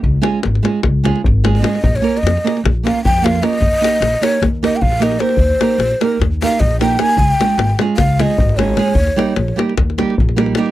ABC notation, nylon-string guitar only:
X:1
M:9/8
L:1/8
Q:3/8=101
K:Ebmix
V:1 name="Nylon-string guitar"
z [A,DFA] z [A,DFA] z [A,DFA] z [A,DFA] [A,DFA] | z [B,DFB] z [B,DFB] z [B,DFB] z [B,DFB] [B,DFB] | z [B,EGB] z [B,EGB] z [B,EGB] z [B,EGB] [B,EGB] | z [B,EGB] z [B,EGB] z [B,EGB] z [B,EGB] [B,EGB] |
z [A,DFA] z [A,DFA] z [A,DFA] z [A,DFA] [A,DFA] | z [G,B,EG] z [G,B,EG] z [G,B,EG] z [G,B,EG] [G,B,EG] |]